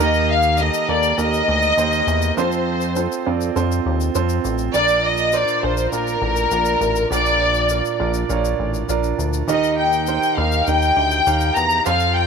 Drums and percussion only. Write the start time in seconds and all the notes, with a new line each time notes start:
0.00 shaker
0.14 shaker
0.42 shaker
0.57 shaker
0.74 shaker
1.03 shaker
1.19 shaker
1.34 shaker
1.62 shaker
1.78 shaker
1.92 shaker
2.08 shaker
2.22 shaker
2.38 shaker
2.52 shaker
2.81 shaker
2.96 shaker
3.12 shaker
3.41 shaker
3.56 shaker
3.72 shaker
4.00 shaker
4.15 shaker
4.29 shaker
4.45 shaker
4.58 shaker
4.74 shaker
4.88 shaker
5.17 shaker
5.32 shaker
5.48 shaker
5.77 shaker
5.93 shaker
6.07 shaker
6.36 shaker
6.51 shaker
6.65 shaker
6.82 shaker
6.96 shaker
7.12 shaker
7.26 shaker
7.54 shaker
7.69 shaker
7.85 shaker
8.14 shaker
8.30 shaker
8.45 shaker
8.74 shaker
8.89 shaker
9.03 shaker
9.20 shaker
9.33 shaker
9.49 shaker
9.64 shaker
9.93 shaker
10.07 shaker
10.23 shaker
10.52 shaker
10.67 shaker
10.82 shaker
11.11 shaker
11.27 shaker
11.41 shaker
11.56 shaker
11.70 shaker
11.86 shaker
12.00 shaker